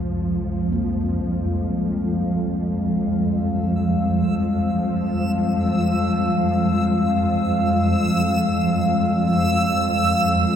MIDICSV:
0, 0, Header, 1, 5, 480
1, 0, Start_track
1, 0, Key_signature, -4, "minor"
1, 0, Tempo, 500000
1, 10136, End_track
2, 0, Start_track
2, 0, Title_t, "Synth texture"
2, 0, Program_c, 0, 99
2, 3016, Note_on_c, 0, 88, 69
2, 10136, Note_off_c, 0, 88, 0
2, 10136, End_track
3, 0, Start_track
3, 0, Title_t, "Analog synth pad"
3, 0, Program_c, 1, 89
3, 0, Note_on_c, 1, 55, 83
3, 0, Note_on_c, 1, 56, 69
3, 0, Note_on_c, 1, 77, 69
3, 10136, Note_off_c, 1, 55, 0
3, 10136, Note_off_c, 1, 56, 0
3, 10136, Note_off_c, 1, 77, 0
3, 10136, End_track
4, 0, Start_track
4, 0, Title_t, "Kettle gongs"
4, 0, Program_c, 2, 14
4, 0, Note_on_c, 2, 36, 43
4, 691, Note_on_c, 2, 58, 37
4, 4486, Note_off_c, 2, 36, 0
4, 6862, Note_off_c, 2, 58, 0
4, 10136, End_track
5, 0, Start_track
5, 0, Title_t, "Synth drone"
5, 0, Program_c, 3, 95
5, 0, Note_on_c, 3, 41, 66
5, 0, Note_on_c, 3, 53, 65
5, 10136, Note_off_c, 3, 41, 0
5, 10136, Note_off_c, 3, 53, 0
5, 10136, End_track
0, 0, End_of_file